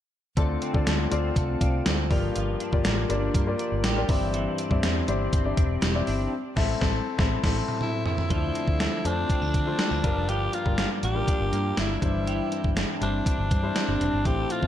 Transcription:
0.37 D2 D3 A3 C4 F4 A4 D5, kick, closed hi-hat
0.62 C4, closed hi-hat
0.73 D3 C4 F4 A4 D5, kick
0.86 D2 A3, snare, closed hi-hat
1.11 D2 C4 F4 A4 D5, closed hi-hat
1.36 C2 A3 A5, kick, closed hi-hat
1.61 C2 C4 D5 F5, kick, closed hi-hat
1.86 D2 F4 A4 C5, snare, closed hi-hat
2.10 G1 G2 F3 A#3 F4 G4 D5, kick, open hi-hat
2.35 G1 F3, closed hi-hat
2.60 D4, closed hi-hat
2.72 G1 A#3 F4 G4 D5, kick
2.85 A1 A#3, snare, closed hi-hat
3.09 G1 A#3 D4 F4 G4 D5, closed hi-hat
3.34 G2 A#3, kick, closed hi-hat
3.47 A#3 F4 G4 D5
3.59 D4, closed hi-hat
3.72 G1
3.84 A1 G4, snare, closed hi-hat
3.96 A#3 F4 G4 D5
4.09 G1 G2 E3 C4 E4 G4 D5, kick, open hi-hat
4.34 E3, closed hi-hat
4.58 D4, closed hi-hat
4.70 G2 C4 E4 G4 D5, kick
4.83 E2 C4, snare, closed hi-hat
5.07 G1 C4 D4 E4 G4 D5, closed hi-hat
5.33 G1 C4, kick, closed hi-hat
5.44 C4 E4 G4 D5
5.57 E1 D4, kick, closed hi-hat
5.82 E1 G4, snare, closed hi-hat
5.94 C4 E4 G4 D5
6.07 G1 D4, open hi-hat
6.56 A1 C4 E4 A4 E5, kick, snare, crash
6.81 A1 C4 E4 A4 E5, kick, snare
7.18 A1 C4 E4 A4 E5, kick, snare
7.43 A1 C4 E4 A4 E5, kick, snare, crash
7.68 mid tom
7.81 E4, mid tom
8.06 E4, floor tom
8.18 floor tom
8.30 D2 D3 F3 A3 D4 A4 C5, kick, closed hi-hat
8.55 C4, closed hi-hat
8.67 D2, kick
8.80 D4, snare, closed hi-hat
9.04 F2 A3 C4 D4 F4 C5, closed hi-hat
9.29 C4, kick, closed hi-hat
9.42 D2 D4
9.54 D3 C4, kick, closed hi-hat
9.66 A3 D4 F4 C5
9.79 C4, snare, closed hi-hat
9.91 D2 D4
10.03 G1 G2 F3 G3 D4 F4 A#4, kick, closed hi-hat
10.16 F1
10.29 G1 F3 G4, closed hi-hat
10.53 A#3 F4, closed hi-hat
10.65 G1 G3 D4 F4 A#4, kick
10.78 D4 F4, snare, closed hi-hat
11.03 A1 A#3 G4, closed hi-hat
11.15 G3 D4 F4 A#4
11.28 D4, kick, closed hi-hat
11.40 G1
11.52 G2 A#3, closed hi-hat
11.77 G1 D4 E4, snare, closed hi-hat
12.02 G1 G2 E3 G3 D4 E4 C5, kick, closed hi-hat
12.27 E3 G4, closed hi-hat
12.52 C4, closed hi-hat
12.64 G1, kick
12.77 D4, snare, closed hi-hat
13.01 G1 G3 C4 D4 E4 C5, closed hi-hat
13.26 D4, kick, closed hi-hat
13.38 G1
13.51 G2 C4, kick, closed hi-hat
13.63 G3 D4 E4 C5
13.76 D4, snare, closed hi-hat
13.88 G1
14.01 F1 C4, closed hi-hat
14.13 G1
14.25 A1 A2 E3 A3 C4 E4 G4 A4 C5, kick, closed hi-hat
14.50 C4 F4, closed hi-hat
14.62 A1 A3 C4 E4 C5, kick

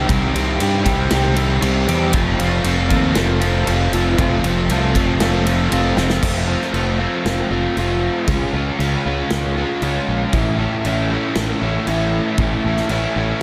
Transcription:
Already playing: C4 G4
0.09 C2 C3 D#3 G3 C4 G4, kick, ride
0.34 C2 G3 C4 G4, ride
0.60 G2 D#3 G3 C4 G4, ride
0.84 C2 G3 C4 G4, kick, ride
1.10 C2 C3 D#3 G3 C4 G4, snare, ride
1.35 G3 C4 G4, ride
1.61 C2 D#3 G3 C4 G4, ride
1.88 E2 G3 C4 G4, ride
2.13 F1 F3 A3 C4 F4, kick, ride
2.39 F1 A3 C4 F4, ride
2.64 F1 F3 A3 C4 F4, ride
2.89 D#2 A3 C4 F4, kick, ride
3.15 F1 F3 A3 C4 F4, snare, ride
3.40 A3 C4 F4, ride
3.66 F1 F3 A3 C4 F4, ride
3.92 F1 A3 C4 F4, ride
4.18 F1 F3 A3 C4 F4, kick, ride
4.43 F1 A3 C4 F4, ride
4.68 C2 F3 A3 C4, ride
4.73 F4
4.95 F1 A3 C4 F4, kick, ride
5.20 F1 F3 A3 C4 F4, snare, ride
5.46 A3 C4 F4, ride
5.71 F1 F3 A3 C4 F4, ride
5.96 F1 A3 C4 F4, snare
6.10 snare
6.22 F1 F3 A3 C4 F4, kick, crash
6.47 A3 C4 F4
6.62 snare
6.73 F1 F3 A3 C4 F4, crash
6.99 A3 C4 F4
7.25 F1, snare, crash
7.50 F1 A3 C4 F4
7.76 F1 F3 A3 C4 F4, crash
8.27 C#2 C#3 G#3 C#4 F4, kick, crash
8.53 C#2 G#3 C#4 F4
8.79 C#2 C#3 G#3 C#4 F4, crash
9.05 C#2 G#3 C#4 F4
9.30 C#2, snare, crash
9.56 G#3 C#4 F4
9.82 C#2 C#3 G#3 C#4 F4, crash
10.08 A#1
10.33 A1 A2 E3 A3 C#4 E4, kick, crash
10.59 A3 C#4 E4
10.84 A1 E3 A3 C#4 E4, crash
11.12 A3 C#4 E4
11.35 A1, snare, crash
11.61 A1 A3 C#4 E4
11.86 A1 E3 A3 C#4 E4, crash
12.38 A1 A2 E3 A3 C#4 E4, kick, crash
12.64 A1 A3 C#4 E4
12.77 snare
12.89 A1 E3 A3 C#4 E4, crash
13.16 A1 A3 C#4 E4

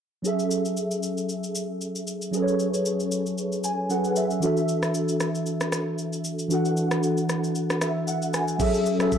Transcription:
0.22 F#3 C#4 G#4, shaker
0.26 A4 E5
0.39 shaker
0.51 shaker
0.65 shaker
0.77 shaker
0.91 shaker
1.03 shaker
1.17 shaker
1.29 shaker
1.44 shaker
1.55 shaker
1.81 shaker
1.96 shaker
2.07 shaker
2.22 shaker
2.31 F#3 C#4 G#4, shaker
2.35 A4 B4
2.42 C#5
2.48 shaker
2.59 shaker
2.74 shaker
2.86 shaker
3.00 shaker
3.12 shaker
3.26 shaker
3.38 shaker
3.52 shaker
3.64 G#5, shaker
3.89 F#3 C#4 G#4 A4 B4 F#5, shaker
4.04 shaker
4.16 E5, shaker
4.31 shaker
4.40 E3 D4 F#4 A4, shaker
4.45 E5
4.57 shaker
4.68 shaker
4.83 cross-stick, shaker
4.94 shaker
5.09 shaker
5.20 cross-stick, shaker
5.35 shaker
5.46 shaker
5.61 cross-stick, shaker
5.72 cross-stick, shaker
5.98 shaker
6.13 shaker
6.24 shaker
6.39 shaker
6.48 E3 D4 F#4, shaker
6.52 A4 F#5
6.65 shaker
6.77 shaker
6.91 cross-stick, shaker
7.03 shaker
7.17 shaker
7.29 cross-stick, shaker
7.44 shaker
7.55 shaker
7.70 cross-stick, shaker
7.81 E5, cross-stick, shaker
8.08 F#5, shaker
8.22 shaker
8.33 G#5, cross-stick, shaker
8.48 shaker
8.58 F#3 C#4 G#4 A4 E5, kick, crash, shaker
8.74 shaker
8.86 shaker
8.98 F#3 C#4 G#4 A4 E5, cross-stick, shaker
9.12 kick, shaker

